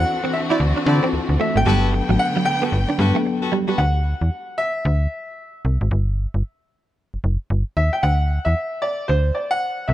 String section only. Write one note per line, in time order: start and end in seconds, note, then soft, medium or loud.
0.00 1.64 E3 medium
0.00 1.64 C4 medium
0.00 1.64 D4 medium
0.00 1.64 F#4 medium
1.66 3.76 D3 medium
1.66 3.76 A3 medium
1.66 3.76 B3 medium
1.66 3.76 G5 loud